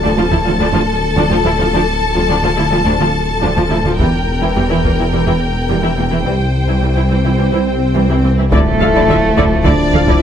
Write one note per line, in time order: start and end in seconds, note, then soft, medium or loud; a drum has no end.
0.00 4.01 D1 medium
0.00 0.09 D2 medium
0.00 0.09 F3 medium
0.00 0.09 D4 medium
0.00 4.00 A4 medium
0.00 3.96 A5 medium
0.17 0.23 D2 soft
0.17 0.23 F3 soft
0.17 0.24 F4 soft
0.31 0.37 D2 soft
0.31 0.37 F3 soft
0.31 0.38 E4 soft
0.31 taiko soft
0.46 0.52 D2 soft
0.46 0.52 F3 soft
0.46 0.52 F4 soft
0.59 0.65 D2 medium
0.59 0.66 F3 medium
0.59 0.66 D4 medium
0.74 0.79 D2 soft
0.74 0.79 F3 soft
0.74 0.79 F4 soft
1.16 1.22 D2 medium
1.16 1.22 F3 medium
1.16 1.23 D4 medium
1.30 1.36 D2 soft
1.30 1.37 F3 soft
1.30 1.36 F4 medium
1.44 1.50 D2 soft
1.44 1.51 F3 medium
1.44 1.51 E4 soft
1.58 1.64 D2 soft
1.58 1.65 F3 medium
1.58 1.65 F4 soft
1.73 1.78 D2 medium
1.73 1.80 F3 medium
1.73 1.80 D4 medium
2.16 2.21 D2 soft
2.16 2.22 F3 soft
2.16 2.21 F4 soft
2.29 2.35 D2 medium
2.29 2.35 F3 medium
2.29 2.35 D4 medium
2.43 2.49 D2 soft
2.43 2.50 F3 soft
2.43 2.49 F4 soft
2.57 2.63 D2 soft
2.57 2.63 F3 soft
2.57 2.63 E4 soft
2.71 2.77 D2 soft
2.71 2.77 F3 soft
2.71 2.78 F4 soft
2.86 2.92 D2 medium
2.86 2.92 F3 medium
2.86 2.92 D4 medium
3.00 3.06 D2 soft
3.00 3.06 F3 soft
3.00 3.06 F4 soft
3.42 3.49 D2 medium
3.42 3.48 F3 medium
3.42 3.48 D4 medium
3.57 3.63 D2 soft
3.57 3.62 F3 soft
3.57 3.62 F4 soft
3.70 3.76 D2 soft
3.70 3.76 F3 soft
3.70 3.76 E4 soft
3.84 3.90 D2 soft
3.84 3.91 F3 soft
3.84 3.91 F4 soft
3.99 6.27 E1 medium
3.99 4.05 E2 medium
3.99 4.05 E3 medium
3.99 4.05 G3 medium
3.99 6.21 A#4 soft
3.99 8.28 G5 soft
3.99 taiko medium
4.41 4.47 E2 soft
4.41 4.48 E3 soft
4.41 4.48 E4 soft
4.55 4.61 E2 soft
4.55 4.62 E3 medium
4.55 4.61 G3 medium
4.69 4.75 E2 soft
4.69 4.76 E3 soft
4.69 4.76 E4 soft
4.84 4.89 E2 soft
4.84 4.90 E3 soft
4.84 4.90 A#3 soft
4.84 taiko soft
4.97 5.03 E2 soft
4.97 5.05 E3 soft
4.97 5.04 E4 soft
5.12 5.18 E2 soft
5.12 5.18 E3 soft
5.12 5.18 G3 soft
5.26 5.32 E2 soft
5.26 5.33 E3 soft
5.26 5.33 E4 soft
5.68 5.74 E2 soft
5.68 5.75 E3 soft
5.68 5.75 G3 soft
5.83 5.88 E2 soft
5.83 5.89 E3 soft
5.83 5.89 E4 soft
5.97 6.03 E2 soft
5.97 6.03 E3 soft
5.97 6.03 A#3 soft
6.11 6.17 E2 soft
6.11 6.17 E3 soft
6.11 6.17 E4 soft
6.25 8.52 C2 medium
6.25 6.31 C2 soft
6.25 6.31 E3 soft
6.25 6.31 G3 soft
6.25 8.28 C5 soft
6.25 swell soft
6.68 6.74 C2 soft
6.68 6.74 E3 soft
6.68 6.74 E4 soft
6.82 6.88 C2 soft
6.82 6.87 E3 soft
6.82 6.88 G3 soft
6.96 7.02 C2 soft
6.96 7.02 E3 soft
6.96 7.02 E4 soft
7.10 7.16 C2 soft
7.10 7.16 E3 soft
7.10 7.16 C4 soft
7.24 7.31 C2 soft
7.24 7.30 E3 soft
7.24 7.30 E4 soft
7.38 7.45 C2 soft
7.38 7.44 E3 soft
7.38 7.44 G3 soft
7.52 7.59 C2 soft
7.52 7.59 E3 soft
7.52 7.58 E4 soft
7.95 8.01 C2 soft
7.95 8.01 E3 soft
7.95 8.01 G3 soft
8.10 8.15 C2 soft
8.10 8.16 E3 soft
8.10 8.16 E4 soft
8.23 8.29 C2 soft
8.23 8.30 E3 soft
8.23 8.30 C4 soft
8.38 8.44 C2 soft
8.38 8.44 E3 soft
8.38 8.44 E4 soft
8.51 10.22 D1 medium
8.51 8.57 D2 medium
8.51 8.58 D3 medium
8.51 10.22 F3 medium
8.51 9.67 A3 medium
8.51 10.22 E4 medium
8.51 8.58 E4 medium
8.51 9.61 A4 medium
8.51 8.58 D5 medium
8.51 taiko medium
8.51 impact medium
8.81 8.86 D2 soft
8.81 8.86 D3 soft
8.81 8.87 A4 soft
8.81 8.87 F5 soft
8.94 9.00 D3 medium
8.94 9.01 E4 medium
8.94 9.01 D5 medium
9.09 9.15 D2 soft
9.09 9.14 D3 soft
9.09 9.16 F4 soft
9.09 9.16 E5 soft
9.37 9.43 D2 medium
9.37 9.43 D3 medium
9.37 9.43 E4 medium
9.37 9.43 D5 medium
9.37 taiko medium
9.65 9.71 D2 medium
9.65 9.71 D3 medium
9.65 10.22 D4 medium
9.65 9.71 E4 medium
9.65 10.22 D5 medium
9.65 9.71 D5 soft
9.65 taiko medium
9.93 10.00 D2 soft
9.93 9.99 D3 soft
9.93 10.00 A4 soft
9.93 10.00 F5 soft
10.07 10.13 D3 medium
10.07 10.14 E4 medium
10.07 10.14 D5 soft
10.07 taiko medium